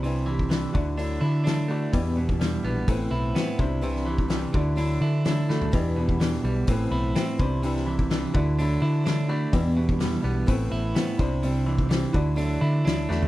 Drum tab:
HH |o---o---o---o---|o---o---o---o---|o---o---o---o---|o---o---o---o---|
SD |----o-------o---|----o-------o---|-o--o-------o-o-|----oo------o---|
FT |----------------|----------------|---------------o|----------------|
BD |---o--o---------|o--o----o-----o-|---o--o---------|o--o----o-----o-|

HH |o---o---o---o---|o---o---o---o---|o---o---o---o---|
SD |-o--o-------o---|----oo------o---|----oo------o-o-|
FT |----------------|----------------|---------------o|
BD |---o--o---------|o--o----o-----o-|---o--o---------|